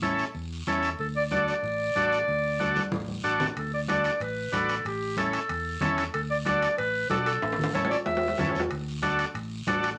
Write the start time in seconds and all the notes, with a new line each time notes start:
Already playing: A1
0.02 C#4 E4 A4, high conga, short guiro
0.18 short guiro
0.35 E2, high conga, long guiro
0.67 E2 C#4 E4 A4, high conga, short guiro
0.83 short guiro
0.99 D2 A4, high conga, long guiro
1.16 D5
1.31 D4 F#4 A4 D5, high conga, short guiro
1.48 D5, short guiro
1.63 A1, high conga, long guiro
1.95 A1 D4 F#4 A4, high conga, short guiro
2.12 short guiro
2.28 D2, high conga, long guiro
2.60 D4 F#4 A4, high conga, short guiro
2.76 high conga, short guiro
2.92 A1, high conga, long guiro
3.08 high conga
3.24 A1 D4 F#4 A4, short guiro
3.40 low conga, short guiro
3.56 D2 A4, high conga, high timbale, long guiro
3.74 D5
3.88 D4 F#4 A4 D5, high conga, high timbale, short guiro
4.04 high timbale, short guiro
4.20 A1 B4, high conga, high timbale, long guiro
4.52 A1 D4 F#4 A4 B4, high conga, high timbale, short guiro
4.69 high timbale, short guiro
4.85 A1 G4, high conga, high timbale, long guiro
5.17 C#4 E4 A4, high conga, high timbale, short guiro
5.33 high timbale, short guiro
5.49 E2, high conga, high timbale, long guiro
5.81 E2 C#4 E4 A4, high conga, low conga, high timbale, short guiro
5.98 high timbale, short guiro
6.14 D2 A4, high conga, high timbale, long guiro
6.30 D5
6.45 D4 F#4 A4 D5, high conga, high timbale, short guiro
6.62 high timbale, short guiro
6.78 A1 B4, high conga, high timbale, long guiro
7.10 B1 D4 F#4 A4, high conga, high timbale, low timbale, short guiro
7.26 A4, high timbale, short guiro
7.42 A1, high conga, high timbale, long guiro
7.53 high timbale
7.58 low conga
7.64 high timbale
7.74 C#4 E4 A4 C#5, high conga, high timbale, short guiro
7.85 low timbale
7.90 D5, short guiro
8.05 E2 E5, high conga, low timbale, long guiro
8.17 low timbale
8.28 low timbale
8.38 F#2 C#4 E4 A4, high conga, low conga, low timbale, short guiro
8.49 low timbale
8.54 E2, short guiro
8.60 low timbale
8.71 D2, high conga, high timbale, long guiro
9.02 D4 F#4 A4, high conga, high timbale, short guiro
9.19 high timbale, short guiro
9.34 A1, high conga, high timbale, long guiro
9.67 A1 D4 F#4 A4, high conga, high timbale, low timbale, short guiro
9.83 high timbale, short guiro